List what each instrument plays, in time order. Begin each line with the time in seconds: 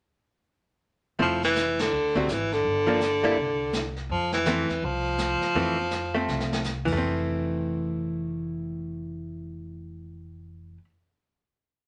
1.19 upright bass F1, hollow-body jazz guitar F3 A3 C4 E4, baritone saxophone F3, brush sweep, kick
1.43 baritone saxophone E3, snare
1.55 snare, hi-hat pedal
1.79 baritone saxophone D3, snare, ride
1.91 upright bass D2, brush sweep
2.15 baritone saxophone C3, hollow-body jazz guitar D3 A3 C4 F#4, kick
2.28 upright bass G#1, baritone saxophone E3, snare, hi-hat pedal
2.52 baritone saxophone D3, snare
2.65 upright bass G1, brush sweep, kick
2.87 hollow-body jazz guitar F3 A#3 D4
3.01 snare, hi-hat pedal
3.23 hollow-body jazz guitar G3 A#3 E4
3.37 upright bass C2, brush sweep, kick
3.73 snare, hi-hat pedal
3.96 snare
4.09 upright bass F2, baritone saxophone F3, brush sweep, kick
4.32 baritone saxophone E3, snare
4.45 hollow-body jazz guitar E3 A3 C4, snare, hi-hat pedal
4.69 upright bass E2, snare
4.82 upright bass C2, baritone saxophone F3, brush sweep, kick
5.18 snare, hi-hat pedal
5.41 muted upright bass stroke, snare
5.55 upright bass F2, hollow-body jazz guitar E3 A3 C4, brush sweep, kick
5.91 snare, hi-hat pedal
6.15 hollow-body jazz guitar A3 C4
6.28 upright bass C2, snare
6.40 snare
6.53 snare
6.64 snare, hi-hat pedal
6.85 upright bass F1, hollow-body jazz guitar E3, kick, crash
6.92 hollow-body jazz guitar A3
6.97 hollow-body jazz guitar C4